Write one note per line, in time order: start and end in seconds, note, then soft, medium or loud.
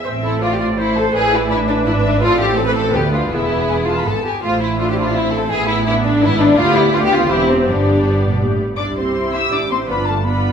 0.04 1.10 A1 medium
0.04 1.10 A2 medium
0.04 0.39 C4 soft
0.04 0.12 C5 soft
0.04 0.40 E5 soft
0.23 0.40 E4 medium
0.23 0.42 A4 medium
0.41 1.14 A3 soft
0.41 0.50 F4 medium
0.41 1.13 C5 soft
0.41 0.78 D5 soft
0.52 0.61 G4 medium
0.60 0.67 F4 medium
0.78 0.96 E4 medium
0.78 1.14 C5 medium
0.96 1.14 A4 medium
1.14 1.85 A1 medium
1.14 1.85 A2 medium
1.14 1.51 E4 medium
1.14 1.32 G#4 medium
1.14 1.49 B4 medium
1.14 1.50 D5 soft
1.33 1.49 E4 medium
1.50 2.22 D4 medium
1.50 1.57 E4 medium
1.50 2.20 B4 medium
1.50 1.86 E5 soft
1.69 1.76 D4 medium
1.85 2.21 G#1 medium
1.85 2.22 G#2 medium
1.85 1.93 E4 medium
1.85 2.21 E5 medium
2.03 2.21 D4 medium
2.21 2.94 A1 medium
2.21 2.93 A2 medium
2.21 2.92 C4 medium
2.21 2.40 F4 loud
2.21 2.56 A4 medium
2.21 2.57 D5 medium
2.41 2.58 G4 medium
2.57 2.66 A4 medium
2.57 2.93 A4 medium
2.57 2.93 C5 soft
2.66 2.75 B4 medium
2.76 2.93 A4 medium
2.93 3.30 D2 medium
2.93 3.29 B3 medium
2.93 3.12 G4 medium
2.93 3.30 B4 medium
2.93 3.31 D5 medium
3.13 3.30 F4 medium
3.30 4.04 E1 medium
3.30 4.04 E2 medium
3.30 4.22 B3 soft
3.30 3.86 E4 medium
3.30 4.24 G#4 soft
3.30 3.64 E5 soft
3.68 3.75 G#5 soft
3.85 4.05 F4 medium
3.85 3.96 A5 medium
3.98 4.06 B5 medium
4.05 4.14 G#1 soft
4.05 4.12 G#2 medium
4.05 4.24 A4 medium
4.05 4.25 A5 medium
4.25 4.42 G4 medium
4.25 4.44 G#5 soft
4.42 5.48 A1 medium
4.42 5.47 A2 medium
4.42 4.77 A3 soft
4.42 5.48 E4 soft
4.42 4.61 F4 medium
4.42 4.77 C5 soft
4.62 4.79 E4 medium
4.78 5.14 D4 soft
4.78 4.88 F4 medium
4.78 5.50 C5 soft
4.90 4.98 G4 medium
4.99 5.16 F4 medium
5.15 5.51 C4 soft
5.15 5.33 E4 medium
5.34 5.52 A4 medium
5.50 6.22 A1 medium
5.50 6.21 A2 medium
5.50 5.86 B3 medium
5.50 5.87 E4 medium
5.50 5.69 G#4 medium
5.50 5.86 E5 soft
5.68 5.86 E4 medium
5.87 6.21 B3 medium
5.87 6.23 D4 medium
5.87 5.94 E4 medium
5.87 6.22 E5 soft
6.05 6.22 D4 medium
6.22 6.59 G#1 medium
6.22 6.58 G#2 medium
6.22 6.56 B3 medium
6.22 6.58 E4 medium
6.22 6.41 E4 medium
6.22 6.58 B4 medium
6.41 6.58 D4 medium
6.57 7.26 D2 medium
6.57 7.27 D2 medium
6.57 6.91 B3 medium
6.57 6.76 F4 loud
6.57 6.91 G4 medium
6.57 6.92 D5 medium
6.75 6.94 E4 medium
6.93 7.29 B3 medium
6.93 7.03 F4 medium
6.93 7.28 G4 medium
6.93 7.30 D5 medium
7.04 7.12 G4 medium
7.13 7.31 F4 medium
7.28 7.68 E1 medium
7.28 7.67 E2 medium
7.28 7.67 C4 medium
7.28 7.49 E4 medium
7.28 7.65 G4 medium
7.28 7.66 C5 medium
7.50 7.68 C4 medium
7.66 8.62 G1 medium
7.66 8.01 G2 medium
7.66 8.61 B3 soft
7.66 8.44 D4 medium
7.66 8.59 G4 medium
7.66 8.61 D5 soft
8.04 8.22 G2 medium
8.23 8.33 A2 medium
8.32 8.42 B2 medium
8.42 8.61 A2 medium
8.60 8.79 G2 soft
8.77 9.48 C2 soft
8.77 8.86 D4 medium
8.77 9.84 E4 soft
8.77 9.84 G4 soft
8.77 8.96 D5 soft
8.77 8.85 D6 medium
8.96 9.33 C4 soft
8.96 9.34 C5 soft
8.96 9.34 C6 soft
9.33 9.52 E4 soft
9.33 9.52 E5 soft
9.33 9.53 E6 medium
9.52 9.88 A1 soft
9.52 9.60 D4 soft
9.52 9.59 D5 soft
9.52 9.71 D6 medium
9.70 9.78 C4 soft
9.70 9.88 C5 soft
9.70 9.78 C6 soft
9.86 10.52 G1 soft
9.86 9.96 B3 soft
9.86 10.24 D4 soft
9.86 10.24 F4 soft
9.86 10.06 B4 medium
9.86 10.07 B5 medium
10.07 10.25 A3 soft
10.07 10.15 A4 soft
10.07 10.26 A5 soft
10.25 10.52 B3 soft
10.25 10.52 D4 soft
10.25 10.52 F4 soft
10.25 10.52 B4 soft
10.25 10.52 B5 soft